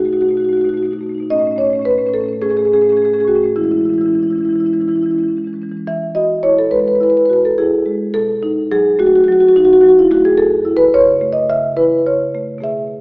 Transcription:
marimba
Already playing: B2 A3 F#4
0.00 B2 D#4
0.05 A3 D#4 F#4
0.13 B2 A3 F#4
0.17 D#4
0.21 B2 A3 D#4 F#4
0.28 B2 A3 F#4
0.34 B2 D#4 F#4
0.40 A3 D#4
0.45 B2 D#4 F#4
0.49 A3
0.53 B2 F#4
0.57 A3 D#4
0.61 B2 A3 F#4
0.66 D#4 F#4
0.73 B2 A3 D#4
0.77 F#4
0.82 B2 A3 D#4 F#4
0.91 B2 A3 D#4 F#4
0.99 B2 A3 D#4
1.07 A3 D#4
1.12 B2 D#4
1.18 B2 A3
1.23 D#4
1.30 A2 A3 C#4 D#5
1.38 A2 A3 C#4
1.45 A3 C#4
1.51 A2 C#4
1.56 A3 C#4 C#5
1.61 A2 A3
1.67 C#4
1.73 A3 C#4
1.79 A2 A3 C#4
1.85 A2 B4
1.90 A3 C#4
1.98 A2 A3 C#4
2.06 A2 A3 C#4
2.14 A2 A3 C#4 A4
2.21 A3 C#4
2.26 A2 C#4
2.33 A3
2.42 A2 A3 C#4 G#4
2.49 A2 A3 C#4 G#4
2.57 A3 C#4 G#4
2.62 A2 C#4 G#4
2.67 A3
2.72 A2 A3 C#4 G#4
2.81 A2 A3 C#4 G#4
2.89 A2 A3 C#4 G#4
2.97 C#4 G#4
3.02 A2 A3 C#4 G#4
3.10 A2 A3 G#4
3.14 C#4
3.19 A3 C#4 G#4
3.25 A2 A3 C#4 F#4
3.35 A2 A3 C#4
3.43 A2 A3 C#4
3.56 E3 G#3 C#4 E4
3.64 E3 G#3 C#4 E4
3.71 E3 G#3 C#4 E4
3.78 E3 C#4 E4
3.83 G#3 E4
3.89 E3 G#3 C#4
3.94 E4
3.98 E3 G#3 C#4 E4
4.05 E3 C#4 E4
4.11 G#3 C#4
4.15 E3 E4
4.19 G#3 C#4 E4
4.24 E3 C#4
4.30 E3 G#3 E4
4.35 G#3 C#4 E4
4.41 E3 C#4
4.45 E3 G#3 E4
4.50 C#4 E4
4.56 E3 G#3 C#4
4.60 E4
4.64 E3 G#3 C#4 E4
4.73 E3 G#3 C#4 E4
4.80 E3 G#3 C#4 E4
4.88 E3 G#3 C#4 E4
4.96 E3 G#3 C#4 E4
5.03 E3 C#4 E4
5.08 G#3 E4
5.12 E3 C#4
5.17 G#3 C#4 E4
5.23 E3 G#3
5.28 E3 C#4
5.36 E3 G#3 C#4
5.44 E3 G#3 C#4
5.53 E3 G#3 C#4
5.62 E3 G#3 C#4
5.69 E3 G#3 C#4
5.77 C#4
5.87 E3 E5
6.15 F#4 D#5
6.43 E4 C#5
6.59 A4
6.71 G#3 B4
6.79 B4
6.88 B4
6.95 B4
7.01 E4 B4
7.10 B4
7.17 B4
7.25 B4
7.30 F#4 B4
7.45 A4
7.58 E4 G#4
7.86 G#3
8.14 B2 A4
8.43 D#4
8.72 F#3 G#4
8.99 A3 F#4
9.07 F#4
9.16 F#4
9.24 F#4
9.28 F#3
9.32 F#4
9.40 F#4
9.49 F#4
9.56 D#4 F#4
9.65 F#4
9.73 F#4
9.81 F#3 F#4
9.89 F#4
9.99 E4
10.11 A3 F#4
10.25 G#4
10.38 F#2 A4
10.65 E4
10.77 B4
10.94 C#3 C#5
11.21 A3
11.33 D#5
11.49 C#3 E5
11.77 E4 B4
12.06 C#3 C#5
12.35 A3
12.58 B2 A3 G#4
12.64 E5

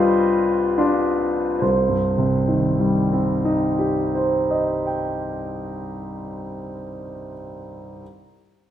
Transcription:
grand piano
Already playing: C2 G3 D4 F4 B4 C5 D#5
0.78 D4 F4
1.59 C2 C5
1.89 G2
2.18 C3
2.48 D#3
2.79 G3
3.12 C4
3.45 D#4
3.79 G4
4.15 C5
4.50 D#5
4.86 G5

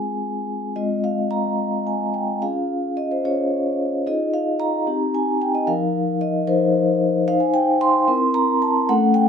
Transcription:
vibraphone
Already playing: G#3 C4 F4 G#4 G#5
0.76 G#3 C4 F4 D#5
1.04 F5
1.31 A#5
1.87 G#5
2.14 G5
2.42 C#4 F4 G#4 F5
2.97 D#5
3.11 C5
3.24 C#4 F4 G#4 C#5
4.07 D#4 F4 G#4 D#5
4.34 F5
4.60 A#5
4.87 C4 D#4 G4
5.15 G#5
5.42 G5
5.55 D#5
5.67 F3 D#4 A#4 F5
6.21 D#5
6.47 F3 D#4 A#4 C5
7.28 D#4 C5 F5
7.40 G#5
7.54 G5
7.81 C6
8.08 C4 E4 A#4
8.34 A#5
8.62 A5
8.89 A3 C#4 A4 F#5
9.14 G5

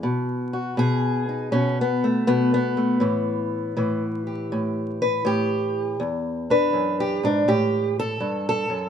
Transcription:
steel-string acoustic guitar
0.03 B2
0.53 F#4
0.77 B2 G#4
1.29 D#4
1.52 B2 C#4
1.81 B3
2.04 A3
2.27 B2 B3
2.54 B3
2.77 A3
3.00 A2 E3
3.77 A2 E3
4.27 G4
4.52 A2
5.02 B4
5.25 A2 G4
6.00 E2
6.50 D4 B4
6.73 F#2
7.00 G4
7.23 G#2 D4
7.48 A2 G4
7.99 A4
8.20 G2
8.49 A4
8.70 F#2

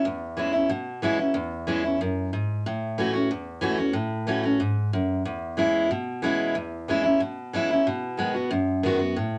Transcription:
steel-string acoustic guitar
0.05 E2
0.37 E3 G#3 C#4 E4
0.53 C#4 E4
0.69 B2
1.02 E3 G#3 C#4 E4
1.19 C#4 E4
1.34 E2
1.67 E3 G#3 C#4 E4
1.84 C#4 E4
2.01 F#2
2.33 G#2
2.66 A2
2.98 E3 A3 C#4 F#4
3.13 C#4 F#4
3.31 E2
3.61 E3 A3 C#4 F#4
3.77 C#4 F#4
3.93 A2
4.27 E3 A3 C#4 F#4
4.43 C#4 F#4
4.60 G#2
4.93 F#2
5.25 E2
5.57 E3 G#3 C#4 E4
5.91 B2
6.22 E3 G#3 C#4 E4
6.55 E2
6.88 E3 G#3 C#4 E4
7.03 C#4 E4
7.20 B2
7.53 E3 G#3 C#4 E4
7.71 C#4 E4
7.87 B2
8.17 D#3 G#3 B3 F#4
8.35 B3 F#4
8.51 F#2
8.83 D#3 G#3 B3 F#4
8.99 B3 F#4
9.16 A2

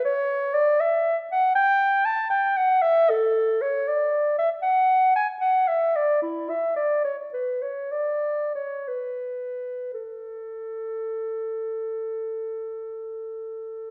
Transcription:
clarinet
0.05 C#5
0.54 D5
0.80 E5
1.32 F#5
1.55 G5
2.05 A5
2.30 G5
2.57 F#5
2.82 E5
3.09 A4
3.62 C#5
3.88 D5
4.38 E5
4.62 F#5
5.16 G#5
5.41 F#5
5.68 E5
5.95 D5
6.22 E4
6.49 E5
6.76 D5
7.04 C#5
7.33 B4
7.62 C#5
7.92 D5
8.55 C#5
8.88 B4
9.94 A4

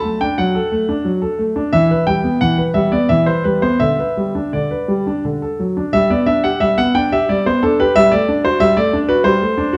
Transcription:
grand piano
Already playing: A5
0.04 A3
0.21 D4 G5
0.38 F#3 F#5
0.55 A4
0.72 A3
0.89 D4
1.05 F#3
1.22 A4
1.39 A3
1.56 D4
1.73 E3 E5
1.91 B4
2.07 G3 G5
2.24 B3
2.41 E3 F#5
2.58 B4
2.74 G3 E5
2.92 B3 D5
3.09 E3 E5
3.26 B4 C5
3.44 G3 B4
3.62 B3 C5
3.80 D3 E5
3.99 B4
4.17 G3
4.35 D4
4.53 D3 D5
4.71 B4
4.88 G3
5.07 D4
5.25 D3
5.42 A4
5.60 F#3
5.77 D4
5.93 G3 E5
6.10 B3 D5
6.26 D4 E5
6.44 G4 F#5
6.60 G3 E5
6.78 B3 F#5
6.95 D4 G5
7.12 G4 E5
7.29 G3 D5
7.46 B3 C5
7.63 D4 A4
7.80 G4 B4
7.96 G3 E5
8.12 A3 D5
8.29 D4
8.45 F#4 C5
8.60 G3 E5
8.77 A3 D5
8.93 D4
9.09 F#4 B4
9.24 G3 C5
9.41 A3
9.58 D4
9.73 F#4

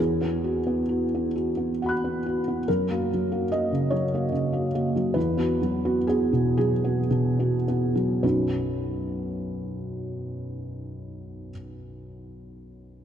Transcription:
felt piano
Already playing: E2 G#4
0.21 B3
0.44 F#4
0.67 B3
0.89 F#4
1.15 B3
1.35 F#4
1.57 B3
1.82 F#4 F#5 B5
1.89 F#6
2.04 B3
2.26 F#4
2.48 B3
2.68 F#2 A#4
2.91 A#3 F#4
3.14 F#3
3.32 A#3 F#4
3.52 A#3 F#4 D#5
3.72 C#3
3.90 F#3 C#5
4.14 A#3 F#4
4.32 C#3
4.53 A#3 F#4
4.75 A#3 F#4
4.96 F#3
5.14 E2 B4
5.37 B3 F#4
5.62 F#3
5.85 B3 F#4
6.07 B3 F#4 G#4
6.33 B2
6.57 F#3 G#4
6.84 B3 F#4
7.10 B2
7.39 B3 F#4
7.68 B3 F#4
7.95 F#3
8.23 B1 F#2 F#3 C#4 D#4 F#4 B4

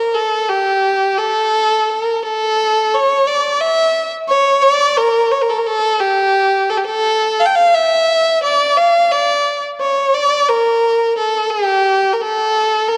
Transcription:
violin
Already playing: A#4
0.15 A4
0.49 G4
1.18 A4
1.89 A#4
2.23 A4
2.94 C#5
3.27 D5
3.61 E5
4.28 C#5
4.62 D5
4.97 A#4
5.32 C#5
5.42 A#4
5.50 A4
5.59 A#4
5.67 A4
6.00 G4
6.70 A4
6.77 G4
6.84 A4
7.40 F5
7.46 G5
7.56 F5
7.75 E5
8.43 D5
8.77 F5
9.12 D5
9.80 C#5
10.14 D5
10.49 A#4
11.18 A4
11.50 G4
12.13 A#4
12.21 A4
12.88 A#4

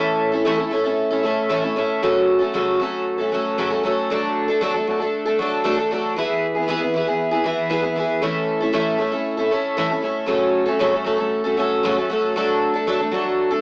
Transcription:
twelve-string acoustic guitar
Already playing: A2 E3 A3 C#4 E4 A4
0.32 A3 C#4 E4 A4
0.45 A2 E3 A3 C#4 E4 A4
0.58 A3 C#4 E4 A4
0.71 A3 C#4 E4 A4
0.84 A3 C#4 E4 A4
1.11 A3 C#4 E4 A4
1.23 A3 C#4 E4 A4
1.49 A2 E3 A3 C#4 E4 A4
1.62 A3 C#4 E4 A4
1.76 A3 C#4 E4 A4
2.02 F#2 C#3 F#3 A3 C#4 A4
2.39 F#3 A3 C#4 A4
2.54 F#2 C#3 F#3 A3 C#4 A4
2.80 F#3 A3 C#4 A4
3.18 F#3 A3 C#4 A4
3.32 F#3 A3 C#4 A4
3.58 F#2 C#3 F#3 A3 C#4 A4
3.70 F#3 A3 C#4 A4
3.83 F#3 A3 C#4 A4
4.10 F#3 A3 D4 A4
4.48 A3 D4 A4
4.61 F#3 A3 D4 A4
4.74 A3 D4 A4
4.87 F#3 A3 D4 A4
5.00 A3 D4 A4
5.25 A3 D4 A4
5.39 F#3 A3 D4 A4
5.64 F#3 A3 D4 A4
5.77 A3 D4 A4
5.91 F#3 A3 D4 A4
6.16 E3 B3 E4 G#4
6.55 B3 E4 G#4
6.68 E3 B3 E4 G#4
6.81 B3 E4 G#4
6.94 E3 B3 E4 G#4
7.07 B3 E4 G#4
7.31 B3 E4 G#4
7.44 E3 B3 E4 G#4
7.70 E3 B3 E4 G#4
7.82 B3 E4 G#4
7.96 E3 B3 E4 G#4
8.22 A2 E3 A3 C#4 E4 A4
8.60 A3 C#4 E4 A4
8.73 A2 E3 A3 C#4 E4 A4
8.98 A3 C#4 E4 A4
9.11 A3 C#4 E4 A4
9.37 A3 C#4 E4 A4
9.51 A3 C#4 E4 A4
9.77 A2 E3 A3 C#4 E4 A4
9.90 A3 C#4 E4 A4
10.02 A3 C#4 E4 A4
10.26 F#2 C#3 F#3 A3 C#4 A4
10.66 F#3 A3 C#4 A4
10.79 F#2 C#3 F#3 A3 C#4 A4
10.92 F#3 A3 C#4 A4
11.04 F#3 A3 C#4 A4
11.18 F#3 A3 C#4 A4
11.44 F#3 A3 C#4 A4
11.57 F#3 A3 C#4 A4
11.83 F#2 C#3 F#3 A3 C#4 A4
11.97 F#3 A3 C#4 A4
12.10 F#3 A3 C#4 A4
12.36 F#3 A3 D4 A4
12.74 A3 D4 A4
12.87 F#3 A3 D4 A4
13.00 A3 D4 A4
13.11 F#3 A3 D4 A4
13.51 A3 D4 A4

